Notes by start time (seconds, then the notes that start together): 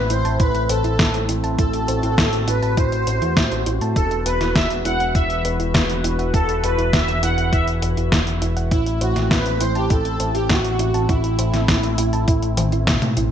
Already playing: A3 C4 E4 B4
0.10 A1 E4 C5, closed hi-hat
0.25 A1 A5, closed hi-hat
0.40 E4 B4, kick, closed hi-hat
0.55 A1, closed hi-hat
0.69 A1 A4 C5, closed hi-hat
0.84 A1 E4, closed hi-hat
0.99 E5, kick, snare, closed hi-hat
1.14 A1, closed hi-hat
1.29 A1 E4, closed hi-hat
1.44 A1 A5, closed hi-hat
1.58 A1 E4 F#4 A4, kick, closed hi-hat
1.73 A1, closed hi-hat
1.88 A1 C5, closed hi-hat
2.03 A1 E4, closed hi-hat
2.18 A1 E5, kick, snare, closed hi-hat
2.33 A1, closed hi-hat
2.48 A1 E4 B4, closed hi-hat
2.62 A1 A5, closed hi-hat
2.77 A1 E4 C5, kick, closed hi-hat
2.92 A1, closed hi-hat
3.07 A1 C5, closed hi-hat
3.22 E2 E4, closed hi-hat
3.37 A2 E5, kick, snare, closed hi-hat
3.52 A1, closed hi-hat
3.66 A1 E4, closed hi-hat
3.81 A2 A5, closed hi-hat
3.96 E1 E3 E4 A4 B4, kick, closed hi-hat
4.11 E1, closed hi-hat
4.26 E1 B4, closed hi-hat
4.41 E1 E4, snare, closed hi-hat
4.55 E5, kick, snare, closed hi-hat
4.70 E1, closed hi-hat
4.85 E1 E4 F#5, closed hi-hat
5.00 E1 F#5, closed hi-hat
5.15 E1 E4 E5, kick, closed hi-hat
5.30 E1, closed hi-hat
5.45 E1 B4, closed hi-hat
5.59 E1 E4, closed hi-hat
5.74 E1 E5, kick, snare, closed hi-hat
5.89 E1, closed hi-hat
6.04 E1 E4, closed hi-hat
6.19 E1 F#5, closed hi-hat
6.34 E1 E4 A4, kick, closed hi-hat
6.48 E1, closed hi-hat
6.63 E1 B4, closed hi-hat
6.78 E1 E4, closed hi-hat
6.93 E5, kick, snare, closed hi-hat
7.08 E1, closed hi-hat
7.23 E1 E4 F#5, closed hi-hat
7.38 E1 F#5, closed hi-hat
7.53 E1 E4 E5, kick, closed hi-hat
7.67 E1, closed hi-hat
7.82 E1 B4, closed hi-hat
7.97 E1 E4, closed hi-hat
8.12 E1 E5, kick, snare, closed hi-hat
8.27 E1, closed hi-hat
8.42 E1 E4, closed hi-hat
8.57 E1 F#5, closed hi-hat
8.71 A1 A3 C4 E4, kick, closed hi-hat
8.86 A1, closed hi-hat
9.01 A1 F#4 C5, closed hi-hat
9.16 A1 E4, snare, closed hi-hat
9.31 B4 E5, kick, snare, closed hi-hat
9.46 A1, closed hi-hat
9.61 A1 E4 C5, closed hi-hat
9.75 A1 G4 A5, closed hi-hat
9.90 A1 E4 A4, kick, closed hi-hat
10.05 A1, closed hi-hat
10.20 A1 C5, closed hi-hat
10.35 A1 E4 G4, closed hi-hat
10.50 A1 F#4 E5, kick, snare, closed hi-hat
10.64 A1, closed hi-hat
10.79 A1 E4, closed hi-hat
10.94 A1 A5, closed hi-hat
11.09 A1 E4, kick, closed hi-hat
11.24 A1, closed hi-hat
11.39 A1 C5, closed hi-hat
11.53 A1 E4, snare, closed hi-hat
11.68 E5, kick, snare, closed hi-hat
11.83 A1, closed hi-hat
11.98 A1 E4, closed hi-hat
12.13 A1 A5, closed hi-hat
12.28 A1 E4, kick, closed hi-hat
12.42 A1, closed hi-hat
12.57 A1 C5, closed hi-hat, high tom
12.72 A1 E4, closed hi-hat
12.87 A1 E5, kick, snare, closed hi-hat, mid tom
13.02 A2, closed hi-hat, mid tom
13.17 A1 E4, closed hi-hat